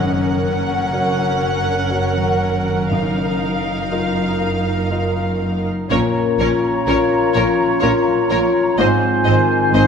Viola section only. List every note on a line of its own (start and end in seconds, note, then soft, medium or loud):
0.00 2.87 C#4 soft
0.00 5.66 A#4 soft
2.92 5.66 D#4 soft
5.90 5.98 C#4 soft
6.40 6.48 C#4 medium
6.88 6.96 C#4 soft
7.36 7.44 C#4 soft
7.83 7.91 C#4 soft
8.31 8.39 C#4 soft
8.79 8.87 C4 medium
9.26 9.34 C4 medium
9.74 9.82 C4 soft